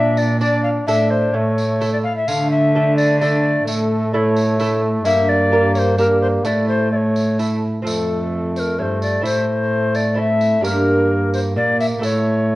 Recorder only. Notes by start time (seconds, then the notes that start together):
Already playing: E5
0.18 D5
0.40 D5
0.63 F5
0.86 E5
1.10 C5
1.33 C#5
1.93 D5
2.04 F5
2.17 E5
2.28 F5
2.51 E5
2.97 D5
3.20 D5
3.67 A4
4.13 C#5 D5
5.05 E5
5.29 D5
5.75 C5 C#5
5.99 A#4
6.21 C5
6.45 D5
6.68 C5
6.92 D5
6.96 C#5
7.86 A4
8.56 A#4 C5
8.79 C5 C#5
9.02 D5
9.25 C5
9.96 D5
10.19 E5
10.64 A#4
11.33 C5
11.57 D5
11.80 E5
12.04 C#5